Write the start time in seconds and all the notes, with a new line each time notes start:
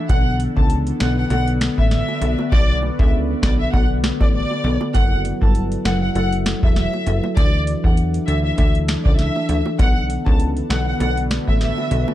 Already playing: A4
0.09 B1 D3 B3 F#4 A4 B4 D5 F#5, kick, closed hi-hat, high bongo
0.40 closed hi-hat
0.56 C#2 B3 D4 A4 A5, kick
0.70 closed hi-hat
0.87 closed hi-hat
1.00 B1 D3 B3 A4 F#5, finger snap, snare, closed hi-hat
1.18 F#5
1.30 B1 D3 B3 A4 F#5, closed hi-hat, high bongo
1.48 closed hi-hat
1.61 finger snap, snare, closed hi-hat
1.78 A1 D3 B3 A4 E5, kick
1.91 E5, snare, closed hi-hat
2.09 high bongo
2.21 B1 D3 B3 A4, closed hi-hat, low bongo
2.39 high bongo
2.52 B1 D5, kick, high bongo
2.82 high bongo
2.99 C#2 B3 D4 A4 E5, kick
3.43 B1 D3 B3 A4 D5, finger snap, kick, snare
3.60 E5
3.73 B1 D3 B3 A4 F#5, kick, high bongo
4.04 finger snap, snare, high bongo
4.20 A1 D3 B3 A4 D5, kick, high bongo
4.33 D5
4.51 high bongo
4.64 B1 D3 B3 A4, low bongo
4.81 high bongo
4.94 F#1 F#3 E4 A4 E5 F#5, kick, closed hi-hat, high bongo
5.25 closed hi-hat
5.41 G1 F#3 E4 A4 A5, kick
5.55 closed hi-hat
5.72 closed hi-hat
5.85 F#1 F#3 E4 A4 F#5, finger snap, snare, closed hi-hat
6.02 F#5
6.15 F#1 F#3 E4 A4 F#5, closed hi-hat, high bongo
6.33 closed hi-hat
6.46 finger snap, snare, closed hi-hat
6.63 E1 F#3 E4 A4 E5, kick
6.76 E5, snare, closed hi-hat
6.93 high bongo
7.06 F#1 F#3 E4 A4, closed hi-hat, low bongo
7.24 high bongo
7.36 D2 E3 D4 E4 A4 D5, kick, closed hi-hat, high bongo
7.67 closed hi-hat
7.84 E2 E3 D4 A4 F#5, kick
7.97 closed hi-hat
8.14 closed hi-hat
8.27 D2 E3 D4 A4 E5, closed hi-hat
8.44 E5
8.58 D2 E3 D4 A4 E5, kick, closed hi-hat, high bongo
8.75 closed hi-hat
8.88 finger snap, snare, closed hi-hat
9.05 C#2 E3 D4 A4 D5, kick
9.18 E5, snare, closed hi-hat
9.36 high bongo
9.49 D2 E3 D4 A4, closed hi-hat, low bongo
9.66 high bongo
9.79 B1 D3 B3 F#4 A4 B4 D5 F#5, kick, closed hi-hat, high bongo
10.10 closed hi-hat
10.26 C#2 B3 D4 A4 A5, kick
10.40 closed hi-hat
10.57 closed hi-hat
10.70 B1 D3 B3 A4 F#5, finger snap, snare, closed hi-hat
10.87 F#5
11.00 B1 D3 B3 A4 F#5, closed hi-hat, high bongo
11.17 closed hi-hat
11.31 finger snap, snare, closed hi-hat
11.47 A1 D3 B3 A4 E5, kick
11.61 E5, snare, closed hi-hat
11.78 high bongo
11.91 B1 D3 B3 A4, closed hi-hat, low bongo
12.08 high bongo